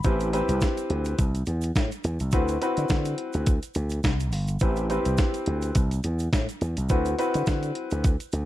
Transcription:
0.03 slap bass A1, grand piano C4 E4 G4 B4, kick, closed hi-hat, shaker
0.20 closed hi-hat, shaker
0.33 grand piano C4 E4 G4 B4, closed hi-hat, shaker
0.49 slap bass C2, closed hi-hat, shaker
0.61 kick, snare, closed hi-hat, shaker
0.77 closed hi-hat, shaker
0.90 slap bass D2, closed hi-hat
1.05 closed hi-hat, shaker
1.19 slap bass C2, kick, closed hi-hat, shaker
1.35 closed hi-hat, shaker
1.46 slap bass E2, closed hi-hat, shaker
1.61 closed hi-hat, shaker
1.76 slap bass A2, kick, snare, closed hi-hat, shaker
1.92 closed hi-hat, shaker
2.04 slap bass E2, closed hi-hat, shaker
2.20 slap bass C2, closed hi-hat, shaker
2.31 slap bass D2, grand piano C4 E4 F#4 B4, kick, closed hi-hat, shaker
2.48 closed hi-hat, shaker
2.61 grand piano C4 E4 F#4 B4, closed hi-hat, shaker
2.77 slap bass D3, closed hi-hat, shaker
2.89 slap bass D3, kick, snare, closed hi-hat, shaker
3.05 closed hi-hat, shaker
3.18 closed hi-hat
3.33 slap bass D2, closed hi-hat, shaker
3.46 kick, closed hi-hat, shaker
3.63 closed hi-hat, shaker
3.74 slap bass D2, closed hi-hat, shaker
3.90 closed hi-hat, shaker
4.04 slap bass C2, kick, snare, closed hi-hat, shaker
4.20 closed hi-hat, shaker
4.32 slap bass G1, open hi-hat, shaker
4.48 closed hi-hat, shaker
4.59 slap bass A1, grand piano C4 E4 G4 B4, kick, closed hi-hat, shaker
4.76 closed hi-hat, shaker
4.90 grand piano C4 E4 G4 B4, closed hi-hat, shaker
5.05 slap bass C2, closed hi-hat, shaker
5.17 kick, snare, closed hi-hat, shaker
5.34 closed hi-hat, shaker
5.46 slap bass D2, closed hi-hat
5.62 closed hi-hat, shaker
5.75 slap bass C2, kick, closed hi-hat, shaker
5.91 closed hi-hat, shaker
6.03 slap bass E2, closed hi-hat, shaker
6.19 closed hi-hat, shaker
6.33 slap bass A2, kick, snare, closed hi-hat, shaker
6.49 closed hi-hat, shaker
6.61 slap bass E2, closed hi-hat, shaker
6.77 slap bass C2, closed hi-hat, shaker
6.89 slap bass D2, grand piano C4 E4 F#4 B4, kick, closed hi-hat, shaker
7.05 closed hi-hat, shaker
7.18 grand piano C4 E4 F#4 B4, closed hi-hat, shaker
7.34 slap bass D3, closed hi-hat, shaker
7.46 slap bass D3, kick, snare, closed hi-hat, shaker
7.63 closed hi-hat, shaker
7.75 closed hi-hat
7.91 slap bass D2, closed hi-hat, shaker
8.04 kick, closed hi-hat, shaker
8.20 closed hi-hat, shaker
8.32 slap bass D2, closed hi-hat, shaker

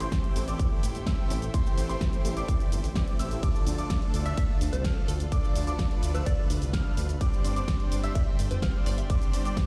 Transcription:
Already playing: analog synth pad A3 E4 G4 C5
0.00 supersaw synth E3 A3 C4 G4 C5, grand piano C6, closed hi-hat, shaker
0.12 kick, snare, closed hi-hat, shaker
0.24 closed hi-hat
0.36 detuned saw bass A1, open hi-hat, shaker
0.48 supersaw synth E3 A3 C4 G4 D5, grand piano D6, closed hi-hat, shaker
0.59 kick, closed hi-hat, shaker
0.83 detuned saw bass A1, open hi-hat, shaker
0.95 detuned saw bass G1, closed hi-hat, shaker
1.07 supersaw synth E3 A3 C4 G4 E5, grand piano E6, kick, snare, closed hi-hat, shaker
1.30 detuned saw bass A1, open hi-hat, shaker
1.42 closed hi-hat, shaker
1.54 supersaw synth E3 A3 C4 G4 C5, grand piano C6, kick, closed hi-hat, shaker
1.66 shaker
1.77 detuned saw bass A1, open hi-hat, shaker
1.89 supersaw synth E3 A3 C4 G4 C5, grand piano C6, closed hi-hat, shaker
2.01 kick, snare, closed hi-hat, shaker
2.13 closed hi-hat, shaker
2.25 detuned saw bass A1, open hi-hat, shaker
2.37 supersaw synth E3 A3 C4 G4 D5, grand piano D6, closed hi-hat, shaker
2.48 kick, closed hi-hat, shaker
2.60 closed hi-hat, shaker
2.72 detuned saw bass G1, open hi-hat, shaker
2.84 detuned saw bass A1, open hi-hat, shaker
2.96 supersaw synth E3 A3 C4 G4 D5, grand piano D6, kick, snare, closed hi-hat, shaker
3.08 closed hi-hat
3.19 detuned saw bass A1, supersaw synth E3 A3 C4 G4 E5, grand piano E6, open hi-hat, shaker
3.31 closed hi-hat, shaker
3.43 supersaw synth F3 A3 D4 A4 D5, analog synth pad D4 F4 A4, grand piano D6, kick, closed hi-hat, ride, shaker
3.55 shaker
3.67 detuned saw bass D2, open hi-hat, shaker
3.78 supersaw synth F3 A3 D4 A4 D5, grand piano D6, closed hi-hat, shaker
3.90 kick, snare, closed hi-hat, ride, shaker
4.02 closed hi-hat
4.14 detuned saw bass D2, open hi-hat, shaker
4.26 supersaw synth F3 A3 D4 A4 E5, synth pluck E5, grand piano E6, closed hi-hat, shaker
4.37 synth pluck E5, kick, closed hi-hat, ride, shaker
4.61 detuned saw bass D2, open hi-hat, shaker
4.73 detuned saw bass C2, synth pluck C5, closed hi-hat, shaker
4.84 supersaw synth F3 A3 D4 A4 F5, grand piano F6, kick, snare, closed hi-hat, ride, shaker
5.08 detuned saw bass D2, synth pluck A4, open hi-hat, shaker
5.20 closed hi-hat, shaker
5.32 supersaw synth F3 A3 D4 A4 D5, analog synth pad B4, grand piano D6, kick, closed hi-hat, ride, shaker
5.44 shaker
5.56 detuned saw bass D2, open hi-hat, shaker
5.67 supersaw synth F3 A3 D4 A4 D5, grand piano D6, closed hi-hat, shaker
5.79 kick, snare, closed hi-hat, ride, shaker
5.91 closed hi-hat
6.03 detuned saw bass D2, open hi-hat, shaker
6.15 supersaw synth F3 A3 D4 A4 E5, synth pluck C5, grand piano E6, closed hi-hat, shaker
6.26 synth pluck D5, kick, closed hi-hat, ride, shaker
6.50 detuned saw bass D2, open hi-hat, shaker
6.62 detuned saw bass C2, open hi-hat, shaker
6.73 supersaw synth F3 A3 D4 A4 F5, grand piano F6, kick, snare, closed hi-hat, ride, shaker
6.97 detuned saw bass D2, open hi-hat, shaker
7.09 closed hi-hat, shaker
7.21 supersaw synth G3 C4 D4 C5 D5, analog synth pad D4 G4 C5, grand piano D6, kick, closed hi-hat, ride, shaker
7.33 shaker
7.44 detuned saw bass G1, open hi-hat, shaker
7.56 supersaw synth G3 C4 D4 C5 D5, grand piano D6, closed hi-hat, shaker
7.68 kick, snare, closed hi-hat, ride, shaker
7.80 closed hi-hat
7.92 detuned saw bass G1, open hi-hat, shaker
8.04 supersaw synth G3 C4 D4 C5 E5, synth pluck E5, grand piano E6, closed hi-hat, shaker
8.15 synth pluck E5, kick, closed hi-hat, ride, shaker
8.39 detuned saw bass G1, open hi-hat, shaker
8.51 detuned saw bass F1, synth pluck C5, closed hi-hat, shaker
8.62 supersaw synth G3 C4 D4 C5 F5, grand piano F6, kick, snare, closed hi-hat, ride, shaker
8.86 detuned saw bass G1, synth pluck D5, open hi-hat, shaker
8.98 synth pluck E5, closed hi-hat, shaker
9.10 supersaw synth G3 C4 D4 C5 D5, grand piano D6, kick, closed hi-hat, ride, shaker
9.22 closed hi-hat, shaker
9.33 detuned saw bass G1, open hi-hat, shaker
9.45 supersaw synth G3 C4 D4 C5 D5, grand piano D6, closed hi-hat, shaker
9.57 kick, snare, closed hi-hat, ride, shaker

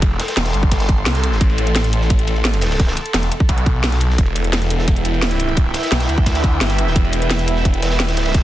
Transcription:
Already playing: detuned saw bass G1, analog synth pad A4 C6
0.02 detuned saw bass F1, kick, closed hi-hat, ride
0.19 snare, closed hi-hat, ride
0.28 snare, closed hi-hat, ride
0.37 detuned saw bass E1, snare, closed hi-hat, ride
0.45 snare, closed hi-hat, ride
0.53 detuned saw bass G1, closed hi-hat, ride
0.63 kick, ride
0.71 kick, snare, closed hi-hat, ride
0.80 snare, closed hi-hat, ride
0.88 kick, closed hi-hat, ride
1.06 detuned saw bass C2, snare, closed hi-hat, ride
1.15 snare, closed hi-hat
1.23 closed hi-hat, ride
1.32 snare
1.41 detuned saw bass A1, kick, closed hi-hat, ride
1.49 ride
1.58 detuned saw bass A1, closed hi-hat, ride
1.67 closed hi-hat
1.76 snare, closed hi-hat, ride
1.84 closed hi-hat
1.93 closed hi-hat, ride
2.01 snare
2.10 kick, closed hi-hat, ride
2.19 closed hi-hat
2.27 closed hi-hat, ride
2.36 ride
2.45 snare, closed hi-hat, ride
2.54 closed hi-hat, ride
2.61 snare, closed hi-hat, ride
2.71 snare, ride
2.80 kick, snare, closed hi-hat, ride
2.87 snare, ride
2.97 closed hi-hat, ride
3.06 closed hi-hat
3.14 detuned saw bass E1, snare, closed hi-hat, ride
3.23 closed hi-hat
3.32 closed hi-hat, ride
3.40 kick, ride
3.49 detuned saw bass B1, kick, closed hi-hat, ride
3.58 closed hi-hat
3.66 kick, closed hi-hat, ride
3.84 snare, closed hi-hat, ride
3.92 snare, closed hi-hat
4.00 closed hi-hat, ride
4.10 snare
4.18 detuned saw bass E1, analog synth pad E4, kick, closed hi-hat, ride
4.26 ride
4.32 detuned saw bass E1, analog synth pad G5, closed hi-hat, ride
4.40 analog synth pad B4
4.44 closed hi-hat
4.53 snare, closed hi-hat, ride
4.62 closed hi-hat
4.70 closed hi-hat, ride
4.78 snare
4.87 analog synth pad E5, kick, closed hi-hat, ride
4.96 closed hi-hat
5.05 closed hi-hat, ride
5.14 ride
5.22 snare, closed hi-hat, ride
5.31 closed hi-hat
5.39 closed hi-hat, ride
5.48 ride
5.57 kick, closed hi-hat, ride
5.74 snare, closed hi-hat, ride
5.83 snare, closed hi-hat, ride
5.92 detuned saw bass B1, snare, closed hi-hat, ride
6.00 snare, closed hi-hat, ride
6.09 detuned saw bass D2, closed hi-hat, ride
6.18 kick, ride
6.26 kick, snare, closed hi-hat, ride
6.35 snare, closed hi-hat, ride
6.44 kick, closed hi-hat, ride
6.61 detuned saw bass G1, snare, closed hi-hat, ride
6.70 snare, closed hi-hat
6.78 closed hi-hat, ride
6.87 snare
6.96 detuned saw bass E1, kick, closed hi-hat, ride
7.05 ride
7.12 detuned saw bass E1, closed hi-hat, ride
7.22 closed hi-hat
7.30 snare, closed hi-hat, ride
7.39 closed hi-hat
7.47 closed hi-hat, ride
7.56 snare
7.65 kick, closed hi-hat, ride
7.74 closed hi-hat
7.82 snare, closed hi-hat, ride
7.91 snare, ride
7.99 snare, closed hi-hat, ride
8.08 snare, closed hi-hat, ride
8.12 detuned saw bass D1
8.17 snare, closed hi-hat, ride
8.26 snare, ride
8.34 detuned saw bass C1, kick, snare, closed hi-hat, ride

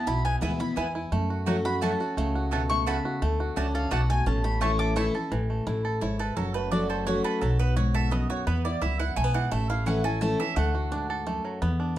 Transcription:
Already playing: five-string banjo B3
0.07 upright bass B1, steel-string acoustic guitar B2, five-string banjo E4, mandolin B5
0.25 five-string banjo B3, mandolin G#5
0.41 upright bass D2, steel-string acoustic guitar E3 G#3 B3 E4, mandolin B3 E4 B4 G#5, five-string banjo E4
0.59 steel-string acoustic guitar B3 E4, five-string banjo E4, mandolin B5
0.76 steel-string acoustic guitar E2, upright bass E2, mandolin B3 E4 B4 G#5, five-string banjo E4
0.95 five-string banjo E4
1.12 upright bass F#2, steel-string acoustic guitar F#2, five-string banjo A3
1.30 five-string banjo F#4
1.46 steel-string acoustic guitar F#3 A3 C#4 F#4, five-string banjo F#3, mandolin A3 F#4 C#5 F#5
1.65 steel-string acoustic guitar C#4 F#4, five-string banjo F#4, mandolin B5
1.81 steel-string acoustic guitar F#3 A3 C#4 F#4, mandolin A3 F#4 C#5 F#5 A5, five-string banjo A4
2.00 steel-string acoustic guitar C#4 F#4, five-string banjo F#4
2.17 upright bass C#2, steel-string acoustic guitar C#3, five-string banjo A3
2.35 five-string banjo F#4
2.51 steel-string acoustic guitar B2, mandolin A3 F#4 C#5 F#5, five-string banjo A4
2.70 five-string banjo A3, mandolin C#6
2.86 steel-string acoustic guitar C#3, mandolin A3 F#4 C#5 F#5 B5, five-string banjo A4
3.05 five-string banjo F#4
3.22 upright bass D2, steel-string acoustic guitar D3, five-string banjo A3
3.40 five-string banjo F#4
3.56 upright bass C#2, mandolin A3 F#4 D5 A5, steel-string acoustic guitar C#4, five-string banjo D4
3.75 five-string banjo A4, mandolin F5
3.91 upright bass B1, steel-string acoustic guitar B2, mandolin A3 F#4 D5 F#5 A5, five-string banjo F#4
4.10 five-string banjo A3, mandolin G#5
4.26 upright bass A1, steel-string acoustic guitar A2, five-string banjo C#4, mandolin A5
4.44 five-string banjo A3, mandolin B5
4.61 steel-string acoustic guitar E3 A3 C#4 E4, mandolin A3 E4 C#5 A5 C#6, five-string banjo C#4
4.79 five-string banjo A4, mandolin D6
4.96 steel-string acoustic guitar E3 A3 C#4 E4, mandolin A3 E4 C#5 A5 C#6, five-string banjo E4
5.14 steel-string acoustic guitar C#4 E4, five-string banjo A4
5.31 upright bass A1, steel-string acoustic guitar A2, five-string banjo E3
5.50 five-string banjo A3
5.67 upright bass A1, steel-string acoustic guitar A2, five-string banjo E4
5.85 five-string banjo A4
6.01 upright bass G#1, steel-string acoustic guitar G#2, five-string banjo E4, mandolin C#5
6.19 five-string banjo A4, mandolin B4
6.37 upright bass F#1, steel-string acoustic guitar F#2, five-string banjo F#3, mandolin A4
6.54 five-string banjo A3, mandolin B4
6.71 steel-string acoustic guitar F#3 A3 C#4 F#4, five-string banjo F#4, mandolin D5
6.90 five-string banjo A4, mandolin C5
7.06 steel-string acoustic guitar F#3 A3 C#4 F#4, five-string banjo F#4, mandolin C#5
7.24 five-string banjo A4, mandolin B4
7.41 upright bass B1, steel-string acoustic guitar B2, five-string banjo F#3, mandolin A4
7.59 five-string banjo B3, mandolin B4
7.76 steel-string acoustic guitar G#2, five-string banjo F#4, mandolin C#5
7.94 five-string banjo A4, mandolin E5
8.11 steel-string acoustic guitar F#2, five-string banjo B3, mandolin D#5
8.30 five-string banjo F#4, mandolin C#5
8.47 steel-string acoustic guitar E2, upright bass E2, five-string banjo B3, mandolin B4
8.65 five-string banjo E4, mandolin D5
8.82 upright bass C#2, steel-string acoustic guitar F#2, five-string banjo E4, mandolin E5
8.99 five-string banjo E4, mandolin F#5
9.16 upright bass B1, steel-string acoustic guitar G#2, five-string banjo A3, mandolin G#5
9.24 five-string banjo B3
9.34 five-string banjo E3, mandolin F#5
9.51 upright bass A1, steel-string acoustic guitar A2, five-string banjo A3, mandolin E5
9.70 five-string banjo E4, mandolin F5
9.86 steel-string acoustic guitar E3 A3 C#4 E4, five-string banjo C#4, mandolin F#5
10.04 steel-string acoustic guitar C#4 E4, five-string banjo A4, mandolin G#5
10.21 steel-string acoustic guitar E3 A3 C#4 E4, five-string banjo A3, mandolin A5
10.39 five-string banjo E3, steel-string acoustic guitar C#4 E4, mandolin E5
10.56 upright bass D2, steel-string acoustic guitar D3, five-string banjo A3, mandolin F#5
10.75 five-string banjo F#4
10.92 steel-string acoustic guitar G#2, five-string banjo D4
11.10 five-string banjo A4
11.26 steel-string acoustic guitar F#2, five-string banjo A3
11.45 five-string banjo F#3
11.62 steel-string acoustic guitar E2, upright bass E2, five-string banjo B3
11.80 five-string banjo D4

